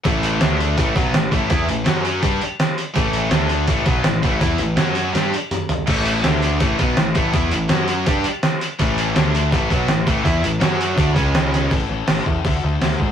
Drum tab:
CC |--------|--------|--------|--------|
HH |oooooooo|oooooooo|oooooooo|oooooooo|
SD |--o---o-|--o---o-|--o---o-|--o-o---|
T2 |--------|--------|--------|------o-|
FT |--------|--------|--------|-------o|
BD |o---oo-o|o---o---|o---oo-o|o-------|

CC |x-------|--------|--------|--------|
HH |-ooooooo|oooooooo|oooooooo|oooooooo|
SD |--o---o-|--o---o-|--o---o-|--o---oo|
T2 |--------|--------|--------|--------|
FT |--------|--------|--------|--------|
BD |o---oo-o|o---o---|o---oo-o|o---oo--|

CC |--------|
HH |o-o-o-o-|
SD |--o---o-|
T2 |--------|
FT |--------|
BD |o--oo--o|